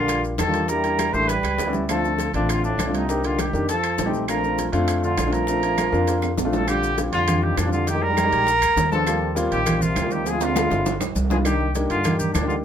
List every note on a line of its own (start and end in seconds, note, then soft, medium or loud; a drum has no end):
0.00 0.36 A#1 medium
0.00 0.22 D3 medium
0.00 0.31 G3 medium
0.00 0.31 A#3 medium
0.00 0.31 D4 medium
0.00 0.22 F4 loud
0.00 0.31 F4 medium
0.08 high bongo medium
0.08 high conga soft
0.08 high timbale medium
0.08 claves medium
0.08 maracas medium
0.23 high conga soft
0.23 maracas soft
0.38 1.08 E2 medium
0.38 0.71 D#3 medium
0.38 0.70 A4 loud
0.38 high bongo medium
0.38 low bongo medium
0.38 high conga medium
0.38 high timbale medium
0.38 low timbale medium
0.38 claves medium
0.38 maracas medium
0.47 0.63 G3 medium
0.47 0.63 A#3 medium
0.47 0.63 D4 medium
0.47 0.63 F4 medium
0.54 high conga soft
0.54 high timbale medium
0.54 maracas soft
0.68 0.80 G3 medium
0.68 1.16 G3 medium
0.68 0.80 A#3 medium
0.68 0.80 D4 medium
0.68 0.80 E4 medium
0.68 1.15 A#4 loud
0.68 high bongo medium
0.68 high conga soft
0.68 maracas medium
0.84 1.05 G3 medium
0.84 1.05 A#3 medium
0.84 1.05 D4 medium
0.84 1.05 E4 medium
0.84 high bongo soft
0.84 high conga soft
0.84 high timbale medium
0.84 maracas soft
0.99 high bongo medium
0.99 high conga medium
0.99 high timbale medium
0.99 low timbale medium
0.99 claves medium
0.99 maracas medium
1.13 1.42 A1 medium
1.13 1.29 G3 medium
1.13 1.31 A3 medium
1.13 1.29 A#3 medium
1.13 1.29 D4 medium
1.13 1.29 E4 medium
1.13 1.30 C5 loud
1.13 high bongo soft
1.13 maracas soft
1.28 1.74 G3 medium
1.28 1.74 B4 loud
1.28 high bongo medium
1.28 high conga soft
1.28 high timbale medium
1.28 maracas medium
1.43 1.57 C#2 medium
1.43 high bongo medium
1.43 high conga soft
1.43 high timbale medium
1.43 claves medium
1.43 maracas soft
1.58 2.28 D2 medium
1.58 high bongo medium
1.58 high conga medium
1.58 high timbale medium
1.58 low timbale medium
1.58 maracas medium
1.67 1.83 G3 medium
1.67 1.82 B3 medium
1.67 1.83 C#4 medium
1.67 1.83 E4 medium
1.73 low bongo medium
1.73 high conga medium
1.73 maracas soft
1.89 2.31 F3 medium
1.89 1.99 A3 medium
1.89 2.00 C4 medium
1.89 2.00 D4 medium
1.89 2.00 F4 medium
1.89 2.31 A4 loud
1.89 high bongo medium
1.89 high conga soft
1.89 high timbale medium
1.89 claves medium
1.89 maracas medium
2.04 2.25 A3 medium
2.04 2.25 C4 medium
2.04 2.25 D4 medium
2.04 2.25 F4 medium
2.04 high conga soft
2.04 maracas soft
2.18 high bongo medium
2.18 high conga medium
2.18 high timbale medium
2.18 low timbale medium
2.18 maracas medium
2.33 2.75 A1 loud
2.33 2.51 A#2 medium
2.33 2.71 A3 medium
2.33 2.71 C4 medium
2.33 2.52 D4 medium
2.33 2.71 D4 medium
2.33 2.72 F4 medium
2.33 high timbale medium
2.33 maracas soft
2.49 2.64 D3 medium
2.49 2.64 F4 loud
2.49 high bongo medium
2.49 high conga soft
2.49 high timbale medium
2.49 claves medium
2.49 maracas medium
2.64 2.96 A2 medium
2.64 2.97 D4 medium
2.64 high conga soft
2.64 maracas soft
2.78 3.48 C2 medium
2.78 high bongo medium
2.78 low bongo medium
2.78 high conga medium
2.78 high timbale medium
2.78 low timbale medium
2.78 claves medium
2.78 maracas medium
2.86 3.02 A3 medium
2.86 3.02 C4 medium
2.86 3.03 D4 medium
2.86 3.03 F4 medium
2.94 3.26 C3 medium
2.94 3.27 D#4 medium
2.94 high conga soft
2.94 high timbale medium
2.94 maracas soft
3.09 3.20 A#3 medium
3.09 3.20 D4 medium
3.09 3.20 D#4 medium
3.09 3.20 G4 medium
3.09 high bongo medium
3.09 high conga soft
3.09 maracas medium
3.24 3.41 D3 medium
3.24 3.45 A#3 medium
3.24 3.45 D4 medium
3.24 3.45 D#4 medium
3.24 3.41 F4 medium
3.24 high bongo soft
3.24 high conga soft
3.24 high timbale medium
3.24 maracas soft
3.39 3.69 D#3 medium
3.39 3.69 G4 medium
3.39 high bongo medium
3.39 high conga loud
3.39 high timbale medium
3.39 low timbale medium
3.39 claves medium
3.39 maracas medium
3.53 3.95 F2 loud
3.53 3.69 A#3 medium
3.53 3.69 D4 medium
3.53 3.69 D#4 medium
3.53 3.69 G4 medium
3.53 high bongo soft
3.53 maracas soft
3.69 4.11 F3 medium
3.69 4.11 A4 loud
3.69 high bongo medium
3.69 high conga soft
3.69 high timbale medium
3.69 maracas medium
3.83 high bongo soft
3.83 high conga soft
3.83 high timbale medium
3.83 claves medium
3.83 maracas soft
3.98 4.68 A#1 medium
3.98 high bongo medium
3.98 low bongo medium
3.98 high conga medium
3.98 high timbale medium
3.98 low timbale medium
3.98 maracas medium
4.06 4.22 A3 medium
4.06 4.22 C4 medium
4.06 4.22 D#4 medium
4.06 4.22 G4 medium
4.13 high conga medium
4.13 maracas soft
4.28 4.71 F3 medium
4.28 4.39 A3 medium
4.28 4.39 C4 medium
4.28 4.39 D4 medium
4.28 4.39 F4 medium
4.28 4.71 A#4 loud
4.28 high bongo medium
4.28 high conga soft
4.28 high timbale medium
4.28 claves medium
4.28 maracas medium
4.43 4.65 A3 medium
4.43 4.65 C4 medium
4.43 4.65 D4 medium
4.43 4.65 F4 medium
4.43 high conga soft
4.43 maracas soft
4.58 high bongo medium
4.58 high conga medium
4.58 high timbale medium
4.58 low timbale medium
4.58 maracas medium
4.72 5.15 F2 medium
4.72 5.10 A3 medium
4.72 5.10 C4 medium
4.72 5.10 D4 medium
4.72 5.10 F4 loud
4.72 high conga soft
4.72 high timbale medium
4.72 maracas soft
4.88 high bongo medium
4.88 high conga soft
4.88 high timbale medium
4.88 claves medium
4.88 maracas medium
5.03 5.34 D3 medium
5.03 5.34 F4 medium
5.03 high conga soft
5.03 maracas soft
5.17 5.87 A#1 medium
5.17 high bongo medium
5.17 low bongo medium
5.17 high conga medium
5.17 high timbale medium
5.17 low timbale medium
5.17 claves medium
5.17 maracas medium
5.26 5.42 A3 medium
5.26 5.42 C4 medium
5.26 5.42 D4 medium
5.26 5.42 F4 medium
5.33 6.38 F3 medium
5.33 6.38 A#4 loud
5.33 high conga soft
5.33 high timbale medium
5.33 maracas soft
5.47 5.59 A3 medium
5.47 5.59 C4 medium
5.47 5.59 D4 medium
5.47 5.59 F4 medium
5.47 high bongo medium
5.47 high conga soft
5.47 maracas medium
5.62 5.84 A3 medium
5.62 5.84 C4 medium
5.62 5.84 D4 medium
5.62 5.85 F4 medium
5.62 high bongo soft
5.62 high conga soft
5.62 high timbale medium
5.62 maracas soft
5.78 high bongo medium
5.78 high conga medium
5.78 high timbale medium
5.78 low timbale medium
5.78 claves medium
5.78 maracas medium
5.92 6.34 F2 medium
5.92 6.29 A#3 medium
5.92 6.29 C4 medium
5.92 6.30 D4 medium
5.92 6.30 F4 loud
5.92 high bongo soft
5.92 maracas soft
6.07 high bongo medium
6.07 high conga soft
6.07 high timbale medium
6.07 maracas medium
6.22 high bongo medium
6.22 high conga soft
6.22 high timbale medium
6.22 claves medium
6.22 maracas soft
6.37 7.07 A#1 medium
6.37 low bongo medium
6.37 high conga medium
6.37 high timbale medium
6.37 maracas medium
6.45 6.61 A3 medium
6.45 6.61 C4 medium
6.45 6.61 D4 medium
6.45 6.61 F4 medium
6.53 6.69 F3 medium
6.53 6.70 A4 medium
6.53 low bongo medium
6.53 high conga medium
6.53 low timbale medium
6.53 maracas soft
6.67 6.98 D3 medium
6.67 6.88 G3 medium
6.67 6.88 C4 medium
6.67 6.89 D4 medium
6.67 6.89 F4 medium
6.67 6.98 G4 loud
6.67 high bongo medium
6.67 high conga soft
6.67 high timbale medium
6.67 claves medium
6.67 maracas medium
6.83 high bongo soft
6.83 high conga soft
6.83 maracas medium
6.97 7.19 G3 medium
6.97 7.19 C4 medium
6.97 7.19 D4 medium
6.97 7.19 F4 medium
6.97 high bongo medium
6.97 high conga medium
6.97 high timbale medium
6.97 low timbale medium
6.97 maracas medium
7.12 7.54 F2 medium
7.12 7.44 D3 medium
7.12 7.45 F4 loud
7.12 high timbale medium
7.12 maracas soft
7.27 7.53 G3 medium
7.27 7.54 C4 medium
7.27 7.54 D4 medium
7.27 7.54 F4 medium
7.27 high bongo medium
7.27 high conga soft
7.27 low conga medium
7.27 high timbale loud
7.27 claves medium
7.27 maracas medium
7.42 7.59 D#3 medium
7.42 7.60 G4 medium
7.42 high bongo soft
7.42 high conga soft
7.57 8.27 F2 medium
7.57 7.72 A#2 medium
7.57 7.72 D4 loud
7.57 high bongo soft
7.57 low bongo medium
7.57 high conga medium
7.57 high timbale medium
7.57 low timbale medium
7.57 claves medium
7.57 maracas medium
7.65 7.86 G3 medium
7.65 7.86 C4 medium
7.65 7.86 D4 medium
7.65 7.86 F4 medium
7.72 7.89 D3 medium
7.72 7.90 F4 medium
7.72 high bongo soft
7.72 high conga soft
7.72 maracas soft
7.87 8.04 D#3 medium
7.87 8.04 G4 loud
7.87 high bongo medium
7.87 high conga soft
7.87 high timbale medium
7.87 maracas medium
7.94 8.05 G#3 medium
7.94 8.05 A#3 medium
7.94 8.05 D#4 medium
7.94 8.05 G4 medium
8.02 8.47 G3 medium
8.02 8.91 A#4 loud
8.02 high bongo soft
8.02 high conga soft
8.10 8.20 G#3 medium
8.10 8.21 A#3 medium
8.10 8.21 D#4 medium
8.10 8.21 G4 medium
8.17 high bongo medium
8.17 high conga loud
8.17 high timbale medium
8.17 low timbale medium
8.17 claves medium
8.17 maracas medium
8.24 8.47 G#3 medium
8.24 8.47 A#3 medium
8.24 8.47 D#4 medium
8.24 8.47 G4 medium
8.32 8.60 A#1 loud
8.32 high timbale medium
8.32 maracas soft
8.47 high bongo medium
8.47 high conga soft
8.47 maracas medium
8.61 8.75 D2 medium
8.61 high bongo soft
8.61 high conga soft
8.61 high timbale medium
8.61 claves medium
8.61 maracas medium
8.76 9.46 D#2 medium
8.76 high bongo soft
8.76 low bongo medium
8.76 high conga medium
8.76 high timbale medium
8.76 low timbale medium
8.76 maracas medium
8.91 9.34 F3 medium
8.91 9.02 G#3 medium
8.91 9.02 B3 medium
8.91 9.02 D4 medium
8.91 9.03 F4 medium
8.91 9.34 A4 loud
8.91 high bongo soft
8.91 high conga medium
8.91 maracas soft
9.07 9.28 G3 medium
9.07 9.28 A#3 medium
9.07 9.28 C4 medium
9.07 9.28 F4 medium
9.07 high bongo medium
9.07 high conga soft
9.07 high timbale medium
9.07 claves medium
9.07 maracas medium
9.22 high bongo soft
9.22 high conga soft
9.35 9.57 G3 medium
9.35 9.57 A#3 medium
9.35 9.57 C4 medium
9.35 9.57 F4 loud
9.35 high bongo medium
9.35 high conga medium
9.35 high timbale medium
9.35 low timbale medium
9.35 maracas medium
9.51 9.93 A#1 loud
9.51 9.83 D#3 medium
9.51 9.83 G4 loud
9.51 high conga soft
9.51 high timbale medium
9.51 maracas soft
9.65 9.92 G3 medium
9.65 9.92 A#3 medium
9.65 9.92 C4 medium
9.65 9.92 F4 medium
9.65 high bongo medium
9.65 high conga soft
9.65 low conga medium
9.65 high timbale loud
9.65 claves medium
9.65 maracas medium
9.81 10.13 C3 medium
9.81 10.13 F4 medium
9.81 high bongo soft
9.81 high conga soft
9.81 low conga medium
9.81 maracas medium
9.96 10.65 D2 medium
9.96 high bongo soft
9.96 low bongo medium
9.96 high conga medium
9.96 high timbale medium
9.96 low timbale medium
9.96 claves medium
9.96 maracas medium
10.03 10.24 G3 medium
10.03 10.24 A#3 medium
10.03 10.24 C4 medium
10.03 10.25 F4 medium
10.11 10.27 D#3 medium
10.11 10.30 G4 medium
10.11 high bongo soft
10.11 high conga soft
10.11 maracas soft
10.26 10.43 F3 medium
10.26 10.45 G#4 loud
10.26 high bongo medium
10.26 high conga soft
10.26 high timbale medium
10.26 maracas medium
10.32 10.43 G#3 medium
10.32 10.44 C4 medium
10.32 10.44 E4 medium
10.32 10.44 F4 medium
10.41 11.01 D3 medium
10.41 11.02 F4 medium
10.41 high bongo soft
10.41 high conga soft
10.41 high timbale loud
10.41 maracas medium
10.47 10.58 G#3 medium
10.47 10.59 C4 medium
10.47 10.59 E4 medium
10.47 10.59 F4 medium
10.56 high bongo loud
10.56 high conga loud
10.56 high timbale medium
10.56 claves medium
10.56 maracas medium
10.62 10.85 G#3 medium
10.62 10.85 C4 medium
10.62 10.85 E4 medium
10.62 10.86 F4 medium
10.70 10.98 G1 loud
10.70 high bongo medium
10.70 low timbale medium
10.70 maracas soft
10.86 low bongo loud
10.86 high conga soft
10.86 low timbale medium
10.86 maracas medium
11.00 11.14 B1 medium
11.00 low bongo medium
11.00 high conga soft
11.00 low timbale medium
11.00 claves medium
11.00 maracas medium
11.15 11.84 C2 medium
11.15 high conga medium
11.15 low timbale medium
11.15 maracas medium
11.30 11.37 F3 medium
11.30 11.40 G#3 medium
11.30 11.41 B3 medium
11.30 11.41 D4 medium
11.30 11.41 F4 medium
11.30 11.37 G#4 medium
11.30 low bongo medium
11.30 high conga medium
11.30 low timbale medium
11.30 maracas soft
11.45 11.73 D#3 medium
11.45 11.66 A#3 medium
11.45 11.66 D4 medium
11.45 11.66 D#4 medium
11.45 11.66 G4 medium
11.45 11.73 G4 loud
11.45 high bongo medium
11.45 high conga soft
11.45 high timbale medium
11.45 claves medium
11.45 maracas medium
11.61 high bongo soft
11.61 high conga soft
11.75 11.96 A#3 medium
11.75 11.96 D4 medium
11.75 11.96 D#4 medium
11.75 11.96 G4 medium
11.75 high bongo medium
11.75 high conga medium
11.75 high timbale medium
11.75 low timbale medium
11.75 maracas medium
11.90 12.31 G2 loud
11.90 12.18 D3 medium
11.90 12.18 F4 loud
11.90 high conga soft
11.90 high timbale medium
11.90 maracas soft
12.04 12.31 A#3 medium
12.04 12.31 D4 medium
12.04 12.31 D#4 medium
12.04 12.31 G4 medium
12.04 high bongo medium
12.04 high conga soft
12.04 low conga medium
12.04 high timbale loud
12.04 claves medium
12.04 maracas medium
12.19 12.34 D#3 medium
12.19 12.33 G4 medium
12.19 high bongo soft
12.19 high conga soft
12.19 low conga medium
12.19 maracas medium
12.33 12.65 D2 medium
12.33 12.48 A#2 medium
12.33 12.47 D4 medium
12.33 high bongo soft
12.33 low bongo medium
12.33 high conga medium
12.33 high timbale medium
12.33 low timbale medium
12.33 claves medium
12.33 maracas medium
12.42 12.63 A#3 medium
12.42 12.63 D4 medium
12.42 12.63 D#4 medium
12.42 12.63 G4 medium
12.48 12.56 D3 medium
12.48 12.55 F4 medium
12.48 high bongo soft
12.48 high conga soft
12.48 maracas soft